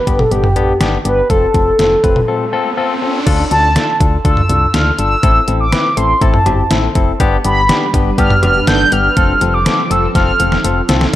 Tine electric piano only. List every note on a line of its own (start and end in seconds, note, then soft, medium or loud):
0.07 0.23 B3 medium
0.07 0.23 D4 medium
0.07 0.23 G4 medium
0.32 0.48 B3 medium
0.32 0.48 D4 medium
0.32 0.48 G4 medium
0.56 0.72 B3 medium
0.56 0.72 D4 medium
0.56 0.72 G4 loud
0.81 0.97 B3 loud
0.81 0.97 D4 medium
0.81 0.97 G4 loud
1.05 1.21 B3 medium
1.05 1.21 D4 medium
1.05 1.21 G4 medium
1.30 1.46 C4 medium
1.30 1.46 F4 medium
1.30 1.46 A4 loud
1.54 1.70 C4 medium
1.54 1.70 F4 medium
1.54 1.70 A4 medium
1.79 1.95 C4 medium
1.79 1.95 F4 medium
1.79 1.95 A4 medium
2.04 2.20 C4 medium
2.04 2.20 F4 medium
2.04 2.20 B4 medium
2.28 2.44 C4 medium
2.28 2.44 F4 medium
2.28 2.44 A4 medium
2.53 2.69 C4 loud
2.53 2.69 F4 loud
2.53 2.69 A4 loud
2.77 2.93 C4 loud
2.77 2.93 F4 loud
2.77 2.93 A4 loud
3.02 3.18 C4 medium
3.02 3.18 F4 medium
3.02 3.18 A4 medium
3.27 3.43 D4 loud
3.27 3.43 F4 loud
3.27 3.43 A4 loud
3.51 3.67 D4 medium
3.51 3.67 F4 medium
3.51 3.67 A4 medium
3.76 3.92 D4 medium
3.76 3.92 F4 medium
3.76 3.92 A4 medium
4.00 4.16 D4 medium
4.00 4.16 F4 medium
4.00 4.16 A4 medium
4.25 4.41 D4 medium
4.25 4.41 F4 medium
4.25 4.41 A4 loud
4.50 4.66 D4 medium
4.50 4.66 F4 medium
4.50 4.66 A4 medium
4.74 4.90 D4 medium
4.74 4.90 F4 medium
4.74 4.90 A4 medium
4.99 5.15 D4 medium
4.99 5.15 F4 medium
4.99 5.15 A4 medium
5.23 5.39 C4 medium
5.23 5.39 E4 medium
5.23 5.39 A4 loud
5.48 5.64 C4 medium
5.48 5.64 E4 medium
5.48 5.64 A4 medium
5.72 5.88 C4 medium
5.72 5.88 E4 medium
5.72 5.88 B4 medium
5.97 6.13 C4 medium
5.97 6.13 E4 medium
5.97 6.13 A4 medium
6.21 6.38 C4 medium
6.21 6.38 E4 medium
6.21 6.38 A4 loud
6.46 6.62 C4 medium
6.46 6.62 E4 medium
6.46 6.62 G4 medium
6.71 6.87 C4 medium
6.71 6.87 E4 medium
6.71 6.87 A4 medium
6.95 7.11 C4 medium
6.95 7.11 E4 medium
6.95 7.11 A4 loud
7.20 7.36 B3 loud
7.20 7.36 D4 loud
7.20 7.36 G4 loud
7.45 7.61 B3 medium
7.45 7.61 D4 medium
7.45 7.61 G4 medium
7.69 7.85 B3 medium
7.69 7.85 D4 medium
7.69 7.85 G4 medium
7.94 8.10 B3 medium
7.94 8.10 D4 medium
7.94 8.10 G4 medium
8.18 8.34 B3 medium
8.18 8.34 D4 medium
8.18 8.34 G4 loud
8.43 8.59 B3 medium
8.43 8.59 D4 medium
8.43 8.59 G4 medium
8.68 8.84 B3 medium
8.68 8.84 D4 medium
8.68 8.84 A4 medium
8.92 9.08 B3 medium
8.92 9.08 D4 medium
8.92 9.08 G4 medium
9.17 9.33 C4 loud
9.17 9.33 F4 medium
9.17 9.33 A4 loud
9.41 9.57 C4 medium
9.41 9.57 F4 medium
9.41 9.57 A4 medium
9.66 9.82 C4 medium
9.66 9.82 F4 medium
9.66 9.82 A4 medium
9.91 10.07 C4 medium
9.91 10.07 F4 medium
9.91 10.07 A4 medium
10.15 10.31 C4 loud
10.15 10.31 F4 medium
10.15 10.31 A4 loud
10.40 10.56 C4 medium
10.40 10.56 F4 medium
10.40 10.56 A4 medium
10.64 10.80 C4 medium
10.64 10.80 F4 medium
10.64 10.80 A4 medium
10.89 11.05 C4 medium
10.89 11.05 F4 medium
10.89 11.05 A4 loud